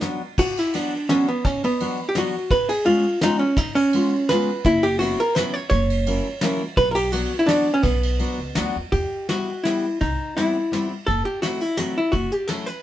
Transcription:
Already playing: hollow-body jazz guitar D4
0.01 steel-string acoustic guitar F#3 B3 D4 F#4, snare, ride
0.38 hollow-body jazz guitar F#4, kick, crash
0.57 hollow-body jazz guitar E4, ride
0.73 steel-string acoustic guitar F#3 B3 D4 F#4, hollow-body jazz guitar D4, ride
1.09 steel-string acoustic guitar F#3 B3 D4 F#4, hollow-body jazz guitar C#4, snare, ride
1.28 hollow-body jazz guitar B3
1.45 hollow-body jazz guitar C#4, kick, ride
1.63 hollow-body jazz guitar B3, ride
1.80 steel-string acoustic guitar F#3 B3 D4 F#4, ride
2.09 hollow-body jazz guitar G4
2.15 steel-string acoustic guitar F#3 B3 D4 F#4, hollow-body jazz guitar F#4, snare, ride
2.51 hollow-body jazz guitar B4, kick, ride
2.69 hollow-body jazz guitar G#4, ride
2.85 steel-string acoustic guitar G#3 B3 C#4 F4, hollow-body jazz guitar F4, ride
3.21 steel-string acoustic guitar G#3 B3 C#4 F4, hollow-body jazz guitar D#4, snare, ride
3.39 hollow-body jazz guitar C#4
3.56 hollow-body jazz guitar D#4, kick, ride
3.75 hollow-body jazz guitar C#4, ride
3.93 steel-string acoustic guitar G#3 B3 C#4 F4, ride
4.29 steel-string acoustic guitar G#3 B3 C#4 F4, hollow-body jazz guitar B4, snare, ride
4.64 upright bass F#1, hollow-body jazz guitar E4, kick, ride
4.83 hollow-body jazz guitar G4, ride
4.99 steel-string acoustic guitar F#3 B3 C#4 E4, hollow-body jazz guitar F#4, ride
5.20 hollow-body jazz guitar A#4
5.35 steel-string acoustic guitar F#3 B3 C#4 E4, hollow-body jazz guitar B4, snare, ride
5.54 hollow-body jazz guitar C#5
5.70 upright bass F#1, hollow-body jazz guitar C#5, kick, ride
5.90 ride
6.06 steel-string acoustic guitar F#3 A#3 C#4 E4, ride
6.41 steel-string acoustic guitar F#3 A#3 C#4 E4, snare, ride
6.77 upright bass B1, hollow-body jazz guitar B4, kick, ride
6.91 hollow-body jazz guitar G4 A#4
6.96 ride
7.12 steel-string acoustic guitar F#3 B3 D4 F#4, hollow-body jazz guitar F#4, ride
7.39 hollow-body jazz guitar E4
7.47 steel-string acoustic guitar F#3 B3 D4 F#4, hollow-body jazz guitar D4, snare, ride
7.74 hollow-body jazz guitar C#4
7.83 upright bass B1, hollow-body jazz guitar B3, kick, ride
8.03 ride
8.19 steel-string acoustic guitar F#3 B3 D4 F#4, ride
8.38 upright bass C#2
8.55 upright bass D2, steel-string acoustic guitar F#3 B3 D4 F#4, snare, ride
8.76 upright bass E2
8.92 upright bass E2, hollow-body jazz guitar G4, kick, ride
9.29 steel-string acoustic guitar G3 B3 E4 G4, hollow-body jazz guitar F#4, snare, ride
9.64 steel-string acoustic guitar G3 B3 E4 G4, hollow-body jazz guitar E4, snare, ride
10.01 upright bass C2, hollow-body jazz guitar D#4, kick, ride
10.37 steel-string acoustic guitar G3 B3 C4 E4, hollow-body jazz guitar E4, snare, ride
10.72 steel-string acoustic guitar G3 B3 C4 E4, snare, ride
11.07 upright bass F#1, hollow-body jazz guitar A4, kick, ride
11.25 hollow-body jazz guitar G4
11.42 steel-string acoustic guitar F#3 A3 C4 E4, hollow-body jazz guitar F#4, snare, ride
11.61 hollow-body jazz guitar E4
11.77 steel-string acoustic guitar F#3 A3 C4 E4, hollow-body jazz guitar F#4, snare, ride
11.98 hollow-body jazz guitar E4
12.12 upright bass F#1, hollow-body jazz guitar F#4, kick, ride
12.32 hollow-body jazz guitar G4
12.48 steel-string acoustic guitar F#3 A3 C#4 E4, hollow-body jazz guitar A4, snare, ride
12.66 hollow-body jazz guitar B4

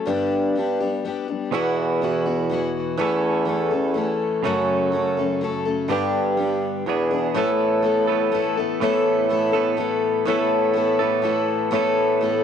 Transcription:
0.06 steel-string acoustic guitar G2 D3 G3 B3 D4 G4, bassoon G2
0.55 steel-string acoustic guitar G3 B3 D4 G4
0.80 steel-string acoustic guitar G3 B3 D4 G4
1.05 steel-string acoustic guitar G3 B3 D4 G4
1.28 steel-string acoustic guitar G3 B3 D4 G4
1.51 clean electric guitar E2 B2, bassoon E2, steel-string acoustic guitar E3 B3 E4 F#4
2.01 steel-string acoustic guitar E3 B3 E4 F#4
2.26 steel-string acoustic guitar B3 E4 F#4
2.50 steel-string acoustic guitar E3 B3 E4 F#4
2.97 bassoon E2, steel-string acoustic guitar E3 A3 C#4 A4, clean electric guitar E4
3.46 steel-string acoustic guitar E3 A3 C#4 A4
3.71 steel-string acoustic guitar A3 C#4 A4
3.94 steel-string acoustic guitar E3 A3 C#4 A4
4.44 steel-string acoustic guitar F#2 C#3 F#3 A3 C#4 A4, bassoon F#2, clean electric guitar F#4
4.92 steel-string acoustic guitar F#3 A3 C#4 A4
5.17 steel-string acoustic guitar F#3 A3 C#4 A4
5.41 steel-string acoustic guitar F#3 A3 C#4 A4
5.65 steel-string acoustic guitar F#3 A3 C#4 A4
5.88 steel-string acoustic guitar G2 D3 G3 B3 D4 G4, bassoon G2
6.37 steel-string acoustic guitar G3 B3 D4 G4
6.86 clean electric guitar E2 B2, bassoon E2, steel-string acoustic guitar E3 B3 D4 G#4
7.11 steel-string acoustic guitar B3 D4 G#4
7.34 clean electric guitar A2 E3, bassoon A2, steel-string acoustic guitar A3 B3 E4 A4
7.82 steel-string acoustic guitar A3 B3 E4 A4
8.08 clean electric guitar A2 E3 A3, steel-string acoustic guitar B3 E4 A4
8.32 steel-string acoustic guitar A3 B3 E4 A4
8.57 steel-string acoustic guitar B3 E4 A4
8.80 clean electric guitar A2 E3, bassoon A2, steel-string acoustic guitar A3 B3 E4 A4
9.29 steel-string acoustic guitar A3 B3 E4 A4
9.52 clean electric guitar E3 A3, steel-string acoustic guitar B3 E4 A4
9.57 clean electric guitar A2
9.77 steel-string acoustic guitar A3 B3 E4 A4
10.25 clean electric guitar A2 E3, bassoon A2, steel-string acoustic guitar A3 B3 E4 A4
10.73 steel-string acoustic guitar A3 B3 E4 A4
10.99 clean electric guitar E3 A3, steel-string acoustic guitar B3 E4 A4
11.03 clean electric guitar A2
11.22 steel-string acoustic guitar A3 B3 E4 A4
11.71 clean electric guitar A2 E3, bassoon A2, steel-string acoustic guitar A3 B3 E4 A4
12.21 steel-string acoustic guitar A3 B3 E4 A4

